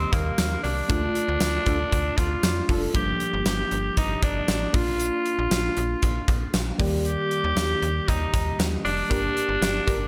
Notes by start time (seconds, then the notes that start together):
Already playing: D#3 G3 A#3 C4 G4 D5
0.13 D#2 A#3, kick, closed hi-hat
0.38 D#2, snare, closed hi-hat, tambourine
0.63 C2 D4, open hi-hat
0.89 D2 A3 D4 F4 A4, kick, closed hi-hat
1.15 closed hi-hat
1.28 D2
1.40 D2, snare, closed hi-hat, tambourine
1.66 D2 D4 F4 A4, kick, closed hi-hat
1.92 D2, kick, closed hi-hat
2.17 D2 F4, kick, closed hi-hat
2.43 F2, snare, closed hi-hat, tambourine
2.69 F1 D4 F4 A4, kick, open hi-hat
2.94 G1 F3 G3 A#3 D4 G4, kick, closed hi-hat
3.20 closed hi-hat
3.33 G1
3.46 G1 G4, snare, closed hi-hat, tambourine
3.71 G1, closed hi-hat
3.97 G1 D#4, kick, closed hi-hat
4.22 G1 D4, kick, closed hi-hat
4.48 A1, snare, closed hi-hat, tambourine
4.73 A#1 A#3 D4 F4, kick, open hi-hat
5.00 closed hi-hat
5.26 closed hi-hat
5.39 A#1
5.51 A#1, snare, closed hi-hat, tambourine
5.77 A#1, closed hi-hat
6.02 A#1, kick, closed hi-hat
6.28 A#1, kick, closed hi-hat
6.54 A#1, snare, closed hi-hat, tambourine
6.78 D#2 D#3 G3 A#3 G4 D5, kick, open hi-hat
7.05 G4, closed hi-hat
7.31 closed hi-hat
7.44 D#2
7.56 D#2, snare, closed hi-hat, tambourine
7.82 D#2, closed hi-hat
8.08 D#2 D#4, kick, closed hi-hat
8.33 D#2, kick, closed hi-hat
8.59 D#2, snare, closed hi-hat, tambourine
8.84 F1 D4, open hi-hat
9.09 G1 A#3 D4 G4 A#4, kick, closed hi-hat
9.37 closed hi-hat
9.49 G1
9.62 G1, snare, closed hi-hat, tambourine
9.87 G1 D4 G4 A#4, kick, closed hi-hat